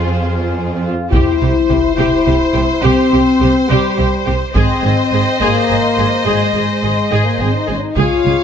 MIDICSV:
0, 0, Header, 1, 9, 480
1, 0, Start_track
1, 0, Tempo, 570342
1, 948, Time_signature, 6, 3, 24, 8
1, 7101, End_track
2, 0, Start_track
2, 0, Title_t, "Violin section"
2, 0, Program_c, 0, 48
2, 0, Note_on_c, 0, 72, 41
2, 749, Note_off_c, 0, 72, 0
2, 940, Note_on_c, 0, 72, 37
2, 3789, Note_off_c, 0, 72, 0
2, 3833, Note_on_c, 0, 75, 49
2, 6543, Note_off_c, 0, 75, 0
2, 6708, Note_on_c, 0, 77, 43
2, 7101, Note_off_c, 0, 77, 0
2, 7101, End_track
3, 0, Start_track
3, 0, Title_t, "Violin section"
3, 0, Program_c, 1, 48
3, 0, Note_on_c, 1, 68, 47
3, 745, Note_off_c, 1, 68, 0
3, 951, Note_on_c, 1, 72, 43
3, 3795, Note_off_c, 1, 72, 0
3, 3837, Note_on_c, 1, 72, 55
3, 6512, Note_off_c, 1, 72, 0
3, 6709, Note_on_c, 1, 73, 44
3, 7101, Note_off_c, 1, 73, 0
3, 7101, End_track
4, 0, Start_track
4, 0, Title_t, "Viola section"
4, 0, Program_c, 2, 48
4, 0, Note_on_c, 2, 65, 37
4, 745, Note_off_c, 2, 65, 0
4, 943, Note_on_c, 2, 67, 37
4, 1169, Note_off_c, 2, 67, 0
4, 1184, Note_on_c, 2, 67, 27
4, 1251, Note_off_c, 2, 67, 0
4, 1421, Note_on_c, 2, 67, 29
4, 1488, Note_off_c, 2, 67, 0
4, 1658, Note_on_c, 2, 67, 41
4, 1886, Note_off_c, 2, 67, 0
4, 1899, Note_on_c, 2, 67, 38
4, 1966, Note_off_c, 2, 67, 0
4, 2129, Note_on_c, 2, 67, 39
4, 2196, Note_off_c, 2, 67, 0
4, 2370, Note_on_c, 2, 67, 53
4, 2602, Note_off_c, 2, 67, 0
4, 2628, Note_on_c, 2, 67, 36
4, 2695, Note_off_c, 2, 67, 0
4, 2871, Note_on_c, 2, 67, 41
4, 2938, Note_off_c, 2, 67, 0
4, 3114, Note_on_c, 2, 67, 58
4, 3335, Note_off_c, 2, 67, 0
4, 3348, Note_on_c, 2, 67, 45
4, 3415, Note_off_c, 2, 67, 0
4, 3581, Note_on_c, 2, 67, 39
4, 3649, Note_off_c, 2, 67, 0
4, 3832, Note_on_c, 2, 68, 49
4, 4053, Note_off_c, 2, 68, 0
4, 4067, Note_on_c, 2, 68, 30
4, 4135, Note_off_c, 2, 68, 0
4, 4321, Note_on_c, 2, 68, 32
4, 4388, Note_off_c, 2, 68, 0
4, 4549, Note_on_c, 2, 68, 49
4, 4768, Note_off_c, 2, 68, 0
4, 4778, Note_on_c, 2, 68, 35
4, 4845, Note_off_c, 2, 68, 0
4, 5027, Note_on_c, 2, 68, 37
4, 5095, Note_off_c, 2, 68, 0
4, 5258, Note_on_c, 2, 68, 37
4, 5486, Note_off_c, 2, 68, 0
4, 5515, Note_on_c, 2, 68, 23
4, 5583, Note_off_c, 2, 68, 0
4, 5756, Note_on_c, 2, 68, 26
4, 5823, Note_off_c, 2, 68, 0
4, 5981, Note_on_c, 2, 68, 36
4, 6208, Note_off_c, 2, 68, 0
4, 6228, Note_on_c, 2, 68, 31
4, 6295, Note_off_c, 2, 68, 0
4, 6450, Note_on_c, 2, 68, 33
4, 6517, Note_off_c, 2, 68, 0
4, 6700, Note_on_c, 2, 68, 42
4, 6927, Note_off_c, 2, 68, 0
4, 6945, Note_on_c, 2, 68, 28
4, 7012, Note_off_c, 2, 68, 0
4, 7101, End_track
5, 0, Start_track
5, 0, Title_t, "French horn section"
5, 0, Program_c, 3, 60
5, 695, Note_on_c, 3, 65, 51
5, 925, Note_off_c, 3, 65, 0
5, 932, Note_on_c, 3, 64, 63
5, 1643, Note_off_c, 3, 64, 0
5, 1653, Note_on_c, 3, 64, 65
5, 2366, Note_off_c, 3, 64, 0
5, 2382, Note_on_c, 3, 60, 72
5, 3102, Note_on_c, 3, 55, 62
5, 3105, Note_off_c, 3, 60, 0
5, 3585, Note_off_c, 3, 55, 0
5, 3844, Note_on_c, 3, 60, 73
5, 4522, Note_off_c, 3, 60, 0
5, 4553, Note_on_c, 3, 58, 62
5, 5270, Note_off_c, 3, 58, 0
5, 5274, Note_on_c, 3, 56, 51
5, 6111, Note_off_c, 3, 56, 0
5, 6111, Note_on_c, 3, 58, 39
5, 6230, Note_off_c, 3, 58, 0
5, 6241, Note_on_c, 3, 60, 37
5, 6351, Note_on_c, 3, 63, 42
5, 6355, Note_off_c, 3, 60, 0
5, 6470, Note_off_c, 3, 63, 0
5, 6481, Note_on_c, 3, 61, 43
5, 6587, Note_on_c, 3, 63, 41
5, 6593, Note_off_c, 3, 61, 0
5, 6708, Note_off_c, 3, 63, 0
5, 6720, Note_on_c, 3, 65, 65
5, 7101, Note_off_c, 3, 65, 0
5, 7101, End_track
6, 0, Start_track
6, 0, Title_t, "Cello section"
6, 0, Program_c, 4, 48
6, 0, Note_on_c, 4, 41, 45
6, 750, Note_off_c, 4, 41, 0
6, 940, Note_on_c, 4, 48, 41
6, 1008, Note_off_c, 4, 48, 0
6, 1190, Note_on_c, 4, 48, 33
6, 1257, Note_off_c, 4, 48, 0
6, 1424, Note_on_c, 4, 48, 35
6, 1491, Note_off_c, 4, 48, 0
6, 1672, Note_on_c, 4, 48, 43
6, 1739, Note_off_c, 4, 48, 0
6, 1906, Note_on_c, 4, 48, 37
6, 1973, Note_off_c, 4, 48, 0
6, 2154, Note_on_c, 4, 48, 38
6, 2221, Note_off_c, 4, 48, 0
6, 2395, Note_on_c, 4, 48, 53
6, 2463, Note_off_c, 4, 48, 0
6, 2638, Note_on_c, 4, 48, 43
6, 2706, Note_off_c, 4, 48, 0
6, 2886, Note_on_c, 4, 48, 44
6, 2953, Note_off_c, 4, 48, 0
6, 3124, Note_on_c, 4, 48, 57
6, 3192, Note_off_c, 4, 48, 0
6, 3351, Note_on_c, 4, 48, 43
6, 3418, Note_off_c, 4, 48, 0
6, 3594, Note_on_c, 4, 48, 44
6, 3661, Note_off_c, 4, 48, 0
6, 3831, Note_on_c, 4, 44, 57
6, 3898, Note_off_c, 4, 44, 0
6, 4074, Note_on_c, 4, 44, 44
6, 4142, Note_off_c, 4, 44, 0
6, 4312, Note_on_c, 4, 44, 41
6, 4379, Note_off_c, 4, 44, 0
6, 4549, Note_on_c, 4, 44, 47
6, 4617, Note_off_c, 4, 44, 0
6, 4790, Note_on_c, 4, 44, 33
6, 4857, Note_off_c, 4, 44, 0
6, 5022, Note_on_c, 4, 44, 30
6, 5090, Note_off_c, 4, 44, 0
6, 5263, Note_on_c, 4, 44, 38
6, 5331, Note_off_c, 4, 44, 0
6, 5508, Note_on_c, 4, 44, 29
6, 5575, Note_off_c, 4, 44, 0
6, 5744, Note_on_c, 4, 44, 31
6, 5812, Note_off_c, 4, 44, 0
6, 5993, Note_on_c, 4, 44, 38
6, 6061, Note_off_c, 4, 44, 0
6, 6242, Note_on_c, 4, 44, 27
6, 6309, Note_off_c, 4, 44, 0
6, 6477, Note_on_c, 4, 44, 25
6, 6545, Note_off_c, 4, 44, 0
6, 6706, Note_on_c, 4, 37, 45
6, 6773, Note_off_c, 4, 37, 0
6, 6950, Note_on_c, 4, 37, 38
6, 7017, Note_off_c, 4, 37, 0
6, 7101, End_track
7, 0, Start_track
7, 0, Title_t, "Double bass section"
7, 0, Program_c, 5, 48
7, 956, Note_on_c, 5, 36, 41
7, 1023, Note_off_c, 5, 36, 0
7, 1194, Note_on_c, 5, 36, 29
7, 1261, Note_off_c, 5, 36, 0
7, 1436, Note_on_c, 5, 36, 34
7, 1503, Note_off_c, 5, 36, 0
7, 1672, Note_on_c, 5, 36, 49
7, 1740, Note_off_c, 5, 36, 0
7, 1909, Note_on_c, 5, 36, 39
7, 1977, Note_off_c, 5, 36, 0
7, 2148, Note_on_c, 5, 36, 34
7, 2215, Note_off_c, 5, 36, 0
7, 2383, Note_on_c, 5, 36, 56
7, 2451, Note_off_c, 5, 36, 0
7, 2628, Note_on_c, 5, 36, 44
7, 2695, Note_off_c, 5, 36, 0
7, 2866, Note_on_c, 5, 36, 44
7, 2934, Note_off_c, 5, 36, 0
7, 3112, Note_on_c, 5, 36, 59
7, 3179, Note_off_c, 5, 36, 0
7, 3350, Note_on_c, 5, 36, 47
7, 3418, Note_off_c, 5, 36, 0
7, 3592, Note_on_c, 5, 36, 41
7, 3660, Note_off_c, 5, 36, 0
7, 3831, Note_on_c, 5, 32, 59
7, 3899, Note_off_c, 5, 32, 0
7, 4072, Note_on_c, 5, 32, 39
7, 4139, Note_off_c, 5, 32, 0
7, 4308, Note_on_c, 5, 32, 38
7, 4375, Note_off_c, 5, 32, 0
7, 4552, Note_on_c, 5, 32, 48
7, 4619, Note_off_c, 5, 32, 0
7, 4790, Note_on_c, 5, 32, 36
7, 4857, Note_off_c, 5, 32, 0
7, 5032, Note_on_c, 5, 32, 27
7, 5099, Note_off_c, 5, 32, 0
7, 5271, Note_on_c, 5, 32, 38
7, 5338, Note_off_c, 5, 32, 0
7, 5508, Note_on_c, 5, 32, 29
7, 5575, Note_off_c, 5, 32, 0
7, 5748, Note_on_c, 5, 32, 29
7, 5815, Note_off_c, 5, 32, 0
7, 5991, Note_on_c, 5, 32, 35
7, 6058, Note_off_c, 5, 32, 0
7, 6221, Note_on_c, 5, 32, 29
7, 6289, Note_off_c, 5, 32, 0
7, 6468, Note_on_c, 5, 32, 25
7, 6536, Note_off_c, 5, 32, 0
7, 6706, Note_on_c, 5, 37, 46
7, 6774, Note_off_c, 5, 37, 0
7, 6951, Note_on_c, 5, 37, 33
7, 7019, Note_off_c, 5, 37, 0
7, 7101, End_track
8, 0, Start_track
8, 0, Title_t, "Sub drop"
8, 0, Program_c, 6, 103
8, 948, Note_on_c, 6, 60, 41
8, 2387, Note_off_c, 6, 60, 0
8, 7101, End_track
9, 0, Start_track
9, 0, Title_t, "Taiko and cinematic ensemble drums"
9, 944, Note_on_c, 9, 41, 43
9, 1029, Note_off_c, 9, 41, 0
9, 3829, Note_on_c, 9, 41, 54
9, 3914, Note_off_c, 9, 41, 0
9, 6702, Note_on_c, 9, 41, 51
9, 6787, Note_off_c, 9, 41, 0
9, 7101, End_track
0, 0, End_of_file